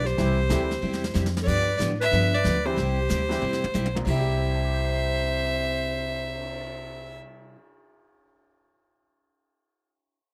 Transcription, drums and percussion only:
0.06 snare
0.18 brush sweep, snare
0.50 snare, hi-hat pedal
0.71 snare
0.93 snare
1.04 snare
1.15 snare, hi-hat pedal
1.26 snare
1.37 snare
1.47 brush sweep, kick, snare, crash
1.80 snare, hi-hat pedal
2.13 brush sweep, snare
2.45 snare, hi-hat pedal
2.77 brush sweep, snare
3.10 snare, hi-hat pedal
3.31 snare
3.53 snare
3.64 high tom
3.75 hi-hat pedal, high tom
3.86 high tom
3.96 high tom
4.07 kick, crash
4.28 cymbal swell

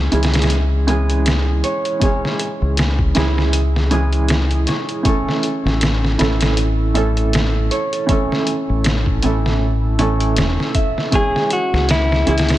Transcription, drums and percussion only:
0.12 closed hi-hat
0.23 snare, closed hi-hat
0.34 snare, closed hi-hat
0.42 snare, closed hi-hat
0.50 closed hi-hat
0.88 closed hi-hat
1.10 closed hi-hat
1.26 snare, closed hi-hat
1.64 closed hi-hat
1.85 closed hi-hat
2.01 kick, closed hi-hat
2.25 snare
2.39 closed hi-hat
2.77 snare, closed hi-hat
2.99 kick
3.15 snare, closed hi-hat
3.38 snare
3.53 closed hi-hat
3.76 snare
3.91 closed hi-hat
4.13 closed hi-hat
4.29 snare, closed hi-hat
4.51 closed hi-hat
4.67 snare, closed hi-hat
4.89 closed hi-hat
5.05 kick, closed hi-hat
5.29 snare
5.43 closed hi-hat
5.67 snare
5.81 snare, closed hi-hat
6.05 snare
6.19 snare, closed hi-hat
6.41 snare, closed hi-hat
6.57 closed hi-hat
6.95 closed hi-hat
7.17 closed hi-hat
7.33 snare, closed hi-hat
7.71 closed hi-hat
7.93 closed hi-hat
8.09 kick, closed hi-hat
8.32 snare
8.47 closed hi-hat
8.84 snare, closed hi-hat
9.06 kick
9.23 closed hi-hat
9.46 snare
9.99 closed hi-hat
10.20 closed hi-hat
10.37 snare, closed hi-hat
10.60 snare
10.75 kick, closed hi-hat
10.98 snare
11.12 kick, closed hi-hat
11.36 snare
11.50 closed hi-hat
11.74 snare
11.89 snare, closed hi-hat
12.12 snare
12.27 closed hi-hat
12.38 snare, closed hi-hat
12.49 snare, closed hi-hat

